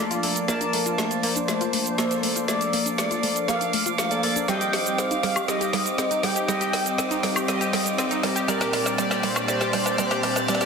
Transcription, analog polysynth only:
0, 0, Header, 1, 2, 480
1, 0, Start_track
1, 0, Key_signature, -2, "major"
1, 0, Tempo, 500000
1, 465, Time_signature, 4, 2, 24, 8
1, 10229, End_track
2, 0, Start_track
2, 0, Title_t, "Analog polysynth"
2, 0, Program_c, 0, 90
2, 0, Note_on_c, 0, 58, 94
2, 0, Note_on_c, 0, 69, 87
2, 0, Note_on_c, 0, 74, 104
2, 196, Note_off_c, 0, 58, 0
2, 196, Note_off_c, 0, 69, 0
2, 196, Note_off_c, 0, 74, 0
2, 225, Note_on_c, 0, 58, 74
2, 225, Note_on_c, 0, 69, 66
2, 225, Note_on_c, 0, 74, 81
2, 436, Note_off_c, 0, 58, 0
2, 436, Note_off_c, 0, 69, 0
2, 436, Note_off_c, 0, 74, 0
2, 464, Note_on_c, 0, 58, 87
2, 464, Note_on_c, 0, 74, 98
2, 464, Note_on_c, 0, 81, 84
2, 1876, Note_off_c, 0, 58, 0
2, 1876, Note_off_c, 0, 74, 0
2, 1876, Note_off_c, 0, 81, 0
2, 1904, Note_on_c, 0, 58, 85
2, 1904, Note_on_c, 0, 69, 80
2, 1904, Note_on_c, 0, 74, 94
2, 2356, Note_off_c, 0, 58, 0
2, 2356, Note_off_c, 0, 69, 0
2, 2356, Note_off_c, 0, 74, 0
2, 2384, Note_on_c, 0, 69, 74
2, 2385, Note_on_c, 0, 58, 81
2, 2385, Note_on_c, 0, 74, 90
2, 3556, Note_off_c, 0, 58, 0
2, 3556, Note_off_c, 0, 69, 0
2, 3556, Note_off_c, 0, 74, 0
2, 3945, Note_on_c, 0, 58, 77
2, 3945, Note_on_c, 0, 69, 70
2, 3945, Note_on_c, 0, 74, 85
2, 4036, Note_off_c, 0, 58, 0
2, 4036, Note_off_c, 0, 69, 0
2, 4036, Note_off_c, 0, 74, 0
2, 4064, Note_on_c, 0, 58, 83
2, 4064, Note_on_c, 0, 69, 73
2, 4064, Note_on_c, 0, 74, 93
2, 4276, Note_off_c, 0, 58, 0
2, 4276, Note_off_c, 0, 69, 0
2, 4276, Note_off_c, 0, 74, 0
2, 4303, Note_on_c, 0, 60, 83
2, 4303, Note_on_c, 0, 75, 92
2, 4304, Note_on_c, 0, 67, 77
2, 5245, Note_off_c, 0, 60, 0
2, 5245, Note_off_c, 0, 67, 0
2, 5245, Note_off_c, 0, 75, 0
2, 5264, Note_on_c, 0, 60, 87
2, 5264, Note_on_c, 0, 67, 80
2, 5264, Note_on_c, 0, 75, 98
2, 6205, Note_off_c, 0, 60, 0
2, 6205, Note_off_c, 0, 75, 0
2, 6206, Note_off_c, 0, 67, 0
2, 6225, Note_on_c, 0, 60, 87
2, 6225, Note_on_c, 0, 67, 78
2, 6226, Note_on_c, 0, 75, 96
2, 7166, Note_off_c, 0, 60, 0
2, 7166, Note_off_c, 0, 67, 0
2, 7166, Note_off_c, 0, 75, 0
2, 7185, Note_on_c, 0, 60, 92
2, 7185, Note_on_c, 0, 67, 82
2, 7186, Note_on_c, 0, 75, 96
2, 8126, Note_off_c, 0, 60, 0
2, 8126, Note_off_c, 0, 67, 0
2, 8126, Note_off_c, 0, 75, 0
2, 8145, Note_on_c, 0, 60, 89
2, 8146, Note_on_c, 0, 67, 81
2, 8146, Note_on_c, 0, 74, 97
2, 8606, Note_off_c, 0, 60, 0
2, 8606, Note_off_c, 0, 67, 0
2, 8606, Note_off_c, 0, 74, 0
2, 8626, Note_on_c, 0, 60, 91
2, 8626, Note_on_c, 0, 67, 84
2, 8626, Note_on_c, 0, 74, 101
2, 9086, Note_off_c, 0, 60, 0
2, 9086, Note_off_c, 0, 67, 0
2, 9086, Note_off_c, 0, 74, 0
2, 9106, Note_on_c, 0, 60, 92
2, 9106, Note_on_c, 0, 67, 86
2, 9106, Note_on_c, 0, 74, 102
2, 9566, Note_off_c, 0, 60, 0
2, 9566, Note_off_c, 0, 67, 0
2, 9566, Note_off_c, 0, 74, 0
2, 9585, Note_on_c, 0, 60, 93
2, 9585, Note_on_c, 0, 67, 84
2, 9585, Note_on_c, 0, 74, 102
2, 10046, Note_off_c, 0, 60, 0
2, 10046, Note_off_c, 0, 67, 0
2, 10046, Note_off_c, 0, 74, 0
2, 10065, Note_on_c, 0, 60, 94
2, 10065, Note_on_c, 0, 67, 85
2, 10066, Note_on_c, 0, 74, 101
2, 10229, Note_off_c, 0, 60, 0
2, 10229, Note_off_c, 0, 67, 0
2, 10229, Note_off_c, 0, 74, 0
2, 10229, End_track
0, 0, End_of_file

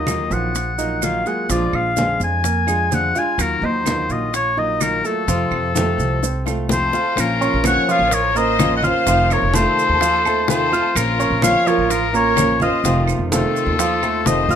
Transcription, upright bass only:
0, 0, Header, 1, 2, 480
1, 0, Start_track
1, 0, Tempo, 472813
1, 1516, Time_signature, 4, 2, 24, 8
1, 14776, End_track
2, 0, Start_track
2, 0, Title_t, "Upright bass"
2, 0, Program_c, 0, 32
2, 0, Note_on_c, 0, 39, 90
2, 287, Note_off_c, 0, 39, 0
2, 310, Note_on_c, 0, 34, 86
2, 1233, Note_off_c, 0, 34, 0
2, 1515, Note_on_c, 0, 34, 94
2, 1744, Note_off_c, 0, 34, 0
2, 1752, Note_on_c, 0, 34, 80
2, 2211, Note_off_c, 0, 34, 0
2, 2231, Note_on_c, 0, 41, 88
2, 3156, Note_off_c, 0, 41, 0
2, 3432, Note_on_c, 0, 39, 89
2, 3664, Note_off_c, 0, 39, 0
2, 3674, Note_on_c, 0, 39, 93
2, 4134, Note_off_c, 0, 39, 0
2, 4155, Note_on_c, 0, 34, 75
2, 5079, Note_off_c, 0, 34, 0
2, 5354, Note_on_c, 0, 41, 81
2, 5585, Note_off_c, 0, 41, 0
2, 5591, Note_on_c, 0, 41, 85
2, 6054, Note_off_c, 0, 41, 0
2, 6073, Note_on_c, 0, 36, 88
2, 6999, Note_off_c, 0, 36, 0
2, 7282, Note_on_c, 0, 34, 88
2, 7626, Note_off_c, 0, 34, 0
2, 7648, Note_on_c, 0, 34, 81
2, 7875, Note_off_c, 0, 34, 0
2, 8114, Note_on_c, 0, 33, 81
2, 9039, Note_off_c, 0, 33, 0
2, 9201, Note_on_c, 0, 29, 88
2, 9545, Note_off_c, 0, 29, 0
2, 9559, Note_on_c, 0, 29, 78
2, 9789, Note_off_c, 0, 29, 0
2, 10041, Note_on_c, 0, 39, 81
2, 10961, Note_off_c, 0, 39, 0
2, 11119, Note_on_c, 0, 34, 91
2, 11462, Note_off_c, 0, 34, 0
2, 11476, Note_on_c, 0, 34, 77
2, 11706, Note_off_c, 0, 34, 0
2, 11960, Note_on_c, 0, 33, 81
2, 12878, Note_off_c, 0, 33, 0
2, 13032, Note_on_c, 0, 29, 99
2, 13377, Note_off_c, 0, 29, 0
2, 13389, Note_on_c, 0, 29, 75
2, 13620, Note_off_c, 0, 29, 0
2, 13872, Note_on_c, 0, 39, 88
2, 14443, Note_off_c, 0, 39, 0
2, 14476, Note_on_c, 0, 29, 85
2, 14691, Note_off_c, 0, 29, 0
2, 14708, Note_on_c, 0, 33, 79
2, 14776, Note_off_c, 0, 33, 0
2, 14776, End_track
0, 0, End_of_file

